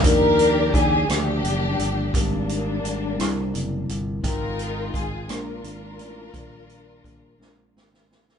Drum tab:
HH |x-x-x-x-x-x-|x-x-x-x-x-x-|x-x-x-x-x-x-|x-x-x-------|
SD |------r-----|------r-----|------r-----|------o-oooo|
BD |o---o-------|o-----------|o---o-------|o---o-------|